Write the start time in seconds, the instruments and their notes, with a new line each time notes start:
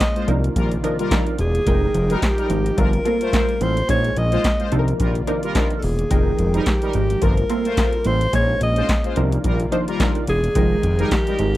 Already playing: analog synth pad G#3 A#3 C#4, alto saxophone D#5
0.00 muted clean electric guitar stroke, kick, snare, clap, closed hi-hat
0.16 analog polysynth G#3 F4 C5, muted clean electric guitar stroke, closed hi-hat
0.27 analog synth bass C2, analog synth pad C3 D#3 F4 D5, analog polysynth F3 D4 D#4 A#4, clean electric guitar D#4 F4 A#4 D5, closed hi-hat
0.44 clean electric guitar D#4 F4 A#4 D5, closed hi-hat
0.55 analog synth bass A#1, analog polysynth G3 F4 A#4, muted clean electric guitar stroke, kick, closed hi-hat
0.71 muted clean electric guitar stroke, closed hi-hat
0.83 analog polysynth F3 D4 D#4 A#4, clean electric guitar D#4 F4 A#4 D5, closed hi-hat
0.99 analog polysynth G3 F4 A#4, muted clean electric guitar stroke, closed hi-hat
1.11 analog polysynth F3 D4 D#4 A#4, kick, snare, clap, closed hi-hat
1.27 clean electric guitar D#4 F4 A#4 D5, closed hi-hat
1.39 analog synth bass E1, alto saxophone G#4, muted clean electric guitar stroke, closed hi-hat
1.55 muted clean electric guitar stroke, closed hi-hat
1.67 analog synth bass F1, analog synth pad F3 G#3 D#4 A#4 G5, analog polysynth G#3 D#4 A#4 G5, clean electric guitar G#3 D#4 G4 A#4, kick, closed hi-hat
1.94 analog synth bass F1, muted clean electric guitar stroke, closed hi-hat
2.10 analog polysynth G3 D#4 A#4, clean electric guitar G#3 D#4 G4 C5, closed hi-hat
2.17 alto saxophone F#4
2.22 alto saxophone G4, kick, snare, clap, closed hi-hat
2.38 analog polysynth G3 D#4 A#4, muted clean electric guitar stroke, closed hi-hat
2.50 analog synth bass G#1, clean electric guitar G#3 D#4 G4 A#4, closed hi-hat
2.65 clean electric guitar G#3 D#4 G4 A#4, closed hi-hat
2.77 analog synth bass G1, analog polysynth F3 A3 C4 D4 F4 A#4, analog synth pad G3 A#3 F4, alto saxophone A#4, muted clean electric guitar stroke, kick, closed hi-hat
2.93 muted clean electric guitar stroke, closed hi-hat
3.05 analog polysynth A3 C4 F4 A#4, clean electric guitar A#3 F4 A4 C5, closed hi-hat
3.21 analog polysynth A3 F4 C5, muted clean electric guitar stroke, closed hi-hat
3.33 analog polysynth A3 C4 F4 A#4, kick, snare, clap, closed hi-hat
3.49 muted clean electric guitar stroke, closed hi-hat
3.61 analog synth bass A1, clean electric guitar A#3 F4 A4 C5, alto saxophone C5, closed hi-hat
3.77 muted clean electric guitar stroke, closed hi-hat
3.89 analog synth bass A#1, analog polysynth G#3 C#4 D#4 C5, analog synth pad G#3 C#4, clean electric guitar C#4 D#4 G#4 C5, alto saxophone C#5, kick, closed hi-hat
4.05 closed hi-hat
4.17 analog synth bass A#1, alto saxophone D#5, muted clean electric guitar stroke, closed hi-hat
4.32 analog polysynth G#3 F4 C5, clean electric guitar C#4 D#4 G#4 C#5, closed hi-hat
4.44 muted clean electric guitar stroke, kick, snare, clap, closed hi-hat
4.59 analog polysynth G#3 F4 C5, muted clean electric guitar stroke, closed hi-hat
4.72 analog synth bass C2, analog synth pad C3 D#3 F4 D5, analog polysynth F3 D4 D#4 A4, clean electric guitar D#4 F4 A#4 D5, closed hi-hat
4.79 analog polysynth A#4
4.88 clean electric guitar D#4 F4 A#4 D5, closed hi-hat
5.00 analog synth bass A#1, analog polysynth G3 F4 A#4, muted clean electric guitar stroke, kick, closed hi-hat
5.15 muted clean electric guitar stroke, closed hi-hat
5.27 analog polysynth F3 D4 D#4 A#4, clean electric guitar D#4 F4 A#4 D5, closed hi-hat
5.43 analog polysynth G3 F4 A#4, muted clean electric guitar stroke, closed hi-hat
5.55 analog polysynth F3 D4 D#4 A#4, muted clean electric guitar stroke, kick, snare, clap, closed hi-hat
5.70 clean electric guitar D#4 F4 A#4 D5, closed hi-hat
5.79 alto saxophone A4, open hi-hat
5.83 analog synth bass E1, alto saxophone G#4, muted clean electric guitar stroke
5.99 muted clean electric guitar stroke, closed hi-hat
6.11 analog synth bass F1, analog synth pad F3 G#3 A#4 G5, analog polysynth G#3 D#4 A#4 G5, clean electric guitar G#3 D#4 G4 A#4, kick, closed hi-hat
6.39 analog synth bass F1, muted clean electric guitar stroke, closed hi-hat
6.54 analog polysynth G3 D#4 A#4, clean electric guitar G#3 D#4 G4 C5, closed hi-hat
6.62 alto saxophone G#4
6.66 alto saxophone G4, muted clean electric guitar stroke, kick, snare, clap, closed hi-hat
6.82 analog polysynth G3 D#4 A#4, muted clean electric guitar stroke, closed hi-hat
6.93 analog synth bass G#1, clean electric guitar G#3 D#4 G4 A#4, closed hi-hat
7.10 clean electric guitar G#3 D#4 G4 A#4, closed hi-hat
7.22 analog synth bass G1, analog polysynth F3 A3 C4 D4 F4 A#4, analog synth pad G3 A#3 F4, alto saxophone A#4, muted clean electric guitar stroke, kick, closed hi-hat
7.37 muted clean electric guitar stroke, closed hi-hat
7.49 analog polysynth A3 C4 F4 A#4, clean electric guitar A#3 F4 A4 C5, closed hi-hat
7.65 analog polysynth A3 F4 C5, muted clean electric guitar stroke, closed hi-hat
7.77 analog polysynth A3 C4 F4 A#4, kick, snare, clap, closed hi-hat
7.93 muted clean electric guitar stroke, closed hi-hat
8.04 analog synth bass A1, clean electric guitar A#3 F4 A4 C5, alto saxophone C5, closed hi-hat
8.21 muted clean electric guitar stroke, closed hi-hat
8.33 analog synth bass A#1, analog synth pad G#3 C#4, analog polysynth G#3 C#4 D#4 C5, clean electric guitar C#4 D#4 G#4 C5, alto saxophone C#5, kick, closed hi-hat
8.61 analog synth bass A#1, alto saxophone D#5, muted clean electric guitar stroke, closed hi-hat
8.76 analog polysynth G#3 F4 C5, clean electric guitar C#4 D#4 G#4 C#5, closed hi-hat
8.88 muted clean electric guitar stroke, kick, snare, clap, closed hi-hat
9.04 analog polysynth G#3 F4 C5, muted clean electric guitar stroke, closed hi-hat
9.16 analog synth bass C2, analog synth pad C3 D#3 F4 D5, analog polysynth F3 D4 D#4 A#4, clean electric guitar D#4 F4 A#4 D5, closed hi-hat
9.32 clean electric guitar D#4 F4 A#4 D5, closed hi-hat
9.44 analog synth bass A#1, analog polysynth G3 F4 A#4, muted clean electric guitar stroke, kick, closed hi-hat
9.60 muted clean electric guitar stroke, closed hi-hat
9.72 analog polysynth F3 D4 D#4 C5, clean electric guitar D#4 F4 A#4 D5, closed hi-hat
9.88 analog polysynth G3 F4 A#4, muted clean electric guitar stroke, closed hi-hat
10.00 analog polysynth F3 D4 D#4 A#4, kick, snare, clap, closed hi-hat
10.15 clean electric guitar D#4 F4 A#4 D5, closed hi-hat
10.27 analog synth bass E1, alto saxophone G#4, muted clean electric guitar stroke, closed hi-hat
10.44 muted clean electric guitar stroke, closed hi-hat
10.55 analog synth bass F1, analog synth pad F3 G#3 A#4 G5, analog polysynth G#3 D#4 A#4 G5, clean electric guitar G#3 D#4 G4 A#4, kick, closed hi-hat
10.83 analog synth bass F1, muted clean electric guitar stroke, closed hi-hat
10.99 analog polysynth G3 D#4 A#4, clean electric guitar G#3 D#4 G4 C5, closed hi-hat
11.11 alto saxophone G4, kick, snare, clap, closed hi-hat
11.27 analog polysynth G3 D#4 A#4, muted clean electric guitar stroke, closed hi-hat
11.39 analog synth bass G#1, clean electric guitar G#3 D#4 G4 A#4, closed hi-hat